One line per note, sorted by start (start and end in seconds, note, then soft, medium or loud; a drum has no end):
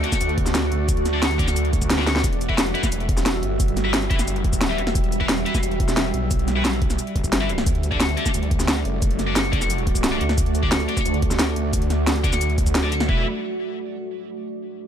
0.00 2.20 A3 medium
0.00 7.62 F#4 medium
0.00 2.20 D5 medium
0.00 0.10 D5 loud
0.00 closed hi-hat medium
0.04 0.10 D4 medium
0.04 0.10 A4 medium
0.12 kick loud
0.12 snare soft
0.12 shaker medium
0.21 0.70 D2 loud
0.21 closed hi-hat medium
0.21 shaker soft
0.29 closed hi-hat soft
0.38 kick loud
0.38 closed hi-hat medium
0.46 snare soft
0.46 shaker medium
0.55 snare loud
0.55 closed hi-hat loud
0.55 shaker medium
0.72 1.55 D2 loud
0.72 closed hi-hat medium
0.89 kick loud
0.89 closed hi-hat loud
0.89 shaker medium
0.97 closed hi-hat soft
1.06 snare soft
1.06 closed hi-hat medium
1.06 shaker soft
1.14 1.21 D4 medium
1.14 1.21 A4 medium
1.14 1.21 D5 medium
1.22 snare loud
1.22 closed hi-hat loud
1.22 shaker soft
1.31 closed hi-hat soft
1.39 1.43 D4 medium
1.39 1.43 A4 medium
1.39 1.43 D5 loud
1.39 kick loud
1.39 closed hi-hat medium
1.39 shaker soft
1.48 snare soft
1.48 shaker medium
1.56 2.23 D2 loud
1.56 closed hi-hat loud
1.56 shaker soft
1.65 closed hi-hat soft
1.73 kick loud
1.73 closed hi-hat medium
1.73 shaker soft
1.82 kick medium
1.82 shaker medium
1.90 snare loud
1.90 closed hi-hat loud
1.90 shaker medium
1.98 2.03 D4 medium
1.98 2.03 A4 medium
1.98 2.03 D5 loud
1.98 snare medium
2.07 snare medium
2.07 closed hi-hat medium
2.07 shaker soft
2.16 snare medium
2.24 2.74 E1 loud
2.24 7.62 G3 medium
2.24 7.62 E5 medium
2.24 kick loud
2.24 closed hi-hat loud
2.24 shaker medium
2.33 closed hi-hat soft
2.41 closed hi-hat medium
2.41 shaker soft
2.49 2.54 E4 medium
2.49 2.54 B4 medium
2.49 2.54 E5 medium
2.49 kick medium
2.58 snare loud
2.58 closed hi-hat loud
2.58 shaker medium
2.66 closed hi-hat soft
2.75 2.81 E4 medium
2.75 2.81 B4 medium
2.75 2.81 E5 medium
2.75 closed hi-hat medium
2.83 kick loud
2.83 snare soft
2.83 shaker medium
2.92 3.41 E1 loud
2.92 closed hi-hat loud
2.92 shaker soft
3.00 closed hi-hat soft
3.09 kick loud
3.09 closed hi-hat medium
3.17 snare soft
3.17 shaker medium
3.26 snare loud
3.26 closed hi-hat loud
3.26 shaker medium
3.43 4.40 G1 loud
3.43 closed hi-hat medium
3.60 kick loud
3.60 closed hi-hat loud
3.60 shaker medium
3.68 closed hi-hat soft
3.77 snare soft
3.77 closed hi-hat medium
3.77 shaker soft
3.85 3.92 E4 medium
3.85 3.92 B4 medium
3.85 3.92 E5 medium
3.94 snare loud
3.94 closed hi-hat medium
3.94 shaker soft
4.02 closed hi-hat soft
4.10 4.15 E4 medium
4.10 4.15 B4 medium
4.10 4.15 E5 loud
4.10 kick loud
4.10 closed hi-hat medium
4.19 snare soft
4.19 shaker medium
4.28 closed hi-hat medium
4.28 shaker soft
4.36 4.77 F1 loud
4.36 closed hi-hat soft
4.44 kick loud
4.44 closed hi-hat medium
4.53 kick medium
4.53 shaker medium
4.61 snare loud
4.61 closed hi-hat medium
4.61 shaker soft
4.70 4.74 E4 medium
4.70 4.74 B4 medium
4.70 4.74 E5 medium
4.78 4.94 E1 loud
4.78 closed hi-hat medium
4.87 snare medium
4.95 5.45 E1 loud
4.95 kick loud
4.95 closed hi-hat medium
4.95 shaker medium
5.04 closed hi-hat soft
5.12 closed hi-hat medium
5.12 shaker soft
5.20 5.25 E4 medium
5.20 5.25 B4 medium
5.20 5.25 E5 medium
5.20 kick medium
5.29 snare loud
5.29 closed hi-hat medium
5.29 shaker soft
5.38 closed hi-hat soft
5.46 5.53 E4 medium
5.46 5.53 B4 medium
5.46 5.53 E5 loud
5.46 closed hi-hat medium
5.55 kick loud
5.55 snare soft
5.55 shaker medium
5.63 6.13 E1 loud
5.63 closed hi-hat medium
5.63 shaker soft
5.71 closed hi-hat soft
5.80 kick loud
5.80 closed hi-hat medium
5.88 snare soft
5.88 shaker medium
5.97 snare loud
5.97 closed hi-hat medium
5.97 shaker soft
6.14 6.97 B1 loud
6.14 closed hi-hat medium
6.31 kick loud
6.31 closed hi-hat loud
6.31 shaker soft
6.39 closed hi-hat soft
6.48 snare soft
6.48 closed hi-hat medium
6.48 shaker soft
6.56 6.63 E4 medium
6.56 6.63 B4 medium
6.56 6.63 E5 medium
6.65 snare loud
6.65 closed hi-hat medium
6.65 shaker soft
6.73 closed hi-hat soft
6.82 kick loud
6.82 closed hi-hat medium
6.90 snare soft
6.90 shaker medium
6.99 closed hi-hat medium
6.99 shaker soft
7.07 closed hi-hat soft
7.16 7.65 G1 loud
7.16 kick loud
7.16 closed hi-hat medium
7.24 kick medium
7.24 shaker medium
7.33 snare loud
7.33 closed hi-hat loud
7.33 shaker soft
7.41 7.45 E4 medium
7.41 7.45 B4 medium
7.41 7.45 E5 medium
7.49 closed hi-hat medium
7.49 shaker soft
7.58 snare medium
7.66 8.16 D2 loud
7.66 13.05 A3 medium
7.66 13.05 F#4 medium
7.66 13.05 D5 medium
7.66 kick loud
7.66 closed hi-hat loud
7.66 shaker medium
7.75 closed hi-hat soft
7.83 closed hi-hat medium
7.83 shaker soft
7.92 7.96 D4 medium
7.92 7.96 A4 medium
7.92 7.96 D5 loud
7.92 kick medium
8.00 snare loud
8.00 closed hi-hat medium
8.00 shaker medium
8.09 closed hi-hat soft
8.17 8.24 D4 medium
8.17 8.24 A4 medium
8.17 8.24 D5 medium
8.17 closed hi-hat medium
8.26 kick loud
8.26 snare soft
8.26 shaker medium
8.34 8.84 D2 loud
8.34 closed hi-hat medium
8.34 shaker medium
8.43 closed hi-hat soft
8.51 kick loud
8.51 closed hi-hat medium
8.60 snare soft
8.60 shaker medium
8.68 snare loud
8.68 closed hi-hat medium
8.68 shaker medium
8.85 10.19 F#1 loud
8.85 closed hi-hat medium
9.02 kick loud
9.02 closed hi-hat loud
9.02 shaker medium
9.11 closed hi-hat soft
9.19 snare soft
9.19 closed hi-hat medium
9.19 shaker soft
9.27 9.34 D4 medium
9.27 9.34 A4 medium
9.27 9.34 D5 medium
9.36 snare loud
9.36 closed hi-hat medium
9.36 shaker medium
9.45 closed hi-hat soft
9.53 9.57 D4 medium
9.53 9.57 A4 medium
9.53 9.57 D5 loud
9.53 kick loud
9.53 closed hi-hat medium
9.61 snare soft
9.61 shaker medium
9.70 closed hi-hat medium
9.70 shaker medium
9.78 closed hi-hat soft
9.87 kick loud
9.87 closed hi-hat medium
9.95 kick medium
9.95 shaker medium
10.04 snare loud
10.04 closed hi-hat loud
10.04 shaker medium
10.12 10.16 D4 medium
10.12 10.16 A4 medium
10.12 10.16 D5 loud
10.21 10.36 D2 loud
10.21 closed hi-hat medium
10.29 snare medium
10.38 10.87 D2 loud
10.38 kick loud
10.38 closed hi-hat loud
10.38 shaker medium
10.46 closed hi-hat soft
10.55 closed hi-hat medium
10.55 shaker soft
10.63 10.67 D4 medium
10.63 10.67 A4 medium
10.63 10.67 D5 loud
10.63 kick medium
10.72 snare loud
10.72 closed hi-hat loud
10.72 shaker medium
10.80 closed hi-hat soft
10.88 10.95 D4 medium
10.88 10.95 A4 medium
10.88 10.95 D5 medium
10.88 closed hi-hat medium
10.97 kick loud
10.97 snare soft
10.97 shaker medium
11.05 11.55 D2 loud
11.05 closed hi-hat medium
11.05 shaker soft
11.14 closed hi-hat soft
11.22 kick loud
11.22 closed hi-hat medium
11.31 snare soft
11.31 shaker medium
11.39 snare loud
11.39 closed hi-hat loud
11.39 shaker medium
11.56 12.40 D2 loud
11.56 closed hi-hat medium
11.73 kick loud
11.73 closed hi-hat loud
11.73 shaker medium
11.82 closed hi-hat soft
11.90 snare soft
11.90 closed hi-hat medium
11.90 shaker soft
12.07 snare loud
12.07 closed hi-hat loud
12.07 shaker medium
12.16 closed hi-hat soft
12.24 12.28 D4 medium
12.24 12.28 A4 medium
12.24 12.28 D5 loud
12.24 kick loud
12.24 closed hi-hat medium
12.24 shaker soft
12.33 snare soft
12.33 shaker medium
12.41 13.07 D2 loud
12.41 closed hi-hat loud
12.41 shaker medium
12.50 closed hi-hat soft
12.58 kick loud
12.58 closed hi-hat medium
12.58 shaker soft
12.66 kick medium
12.66 shaker medium
12.75 snare loud
12.75 closed hi-hat loud
12.75 shaker medium
12.83 12.88 D4 medium
12.83 12.88 A4 medium
12.83 12.88 D5 loud
12.92 closed hi-hat medium
12.92 shaker soft
13.00 snare medium
13.09 13.25 E1 loud
13.09 13.21 E4 medium
13.09 13.21 B4 medium
13.09 13.21 E5 medium
13.09 kick loud